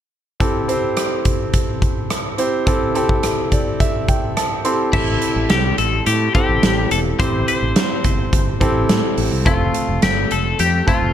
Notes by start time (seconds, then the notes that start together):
0.40 C4 E4 G4 A4, kick, closed hi-hat
0.68 C4 E4 G4 C5, closed hi-hat
0.97 cross-stick, closed hi-hat
1.25 kick, closed hi-hat
1.54 kick, closed hi-hat
1.82 kick, closed hi-hat
2.10 cross-stick, closed hi-hat
2.38 C4 E4 G4 C5, closed hi-hat
2.66 C4 E4 G4 A4, kick, closed hi-hat
2.95 C4 E4 G4 A4, closed hi-hat
3.09 kick
3.23 cross-stick, closed hi-hat
3.52 D5, kick, closed hi-hat
3.80 E5, kick, closed hi-hat
4.08 G5, kick, closed hi-hat
4.37 A5, cross-stick, closed hi-hat
4.64 C4 E4 G4 A4 C6, closed hi-hat
4.93 A1 C4 E4 G4 A4, kick, crash
5.22 closed hi-hat
5.36 A1
5.50 C2 G4, snare, closed hi-hat
5.78 A1 A4, closed hi-hat
6.06 A2 G4, closed hi-hat
6.34 C4 E4 G4 A4, kick, closed hi-hat
6.49 A1
6.63 A1, snare, closed hi-hat
6.91 E1 A4, closed hi-hat
7.19 A1 C4 E4 G4 C5, kick, closed hi-hat
7.48 C5, closed hi-hat
7.62 A1
7.76 snare, closed hi-hat
8.04 G1, kick, closed hi-hat
8.33 G1, kick, closed hi-hat
8.60 A1 C4 E4 G4 A4, kick, closed hi-hat
8.89 A2, snare, closed hi-hat
9.18 A1, open hi-hat
9.32 C2
9.45 F1 A3 C4 F4 A4, kick, closed hi-hat
9.74 closed hi-hat
9.88 F1
10.02 G1 G4, snare, closed hi-hat
10.31 F1 A4, closed hi-hat
10.59 F2 G4, closed hi-hat
10.87 A3 C4 F4 A4, kick, closed hi-hat
11.02 F1